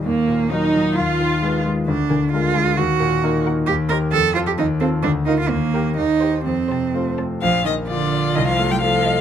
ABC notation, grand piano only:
X:1
M:2/4
L:1/8
Q:1/4=132
K:Ebm
V:1 name="Grand piano"
E,, B,, [G,EB] G, | E,, E, [A,Fc] A, | =D,, =D, [A,FB] A, | E,, B,, [B,EB] B, |
[K:Bb] E,, [GB] F,, [FA] | E,, [FA] D,, [FB] | E,, [GB] E,, [Gc] | F,, C, [A,Fc] A, |
B,,, B, F d | C,, A, F e |]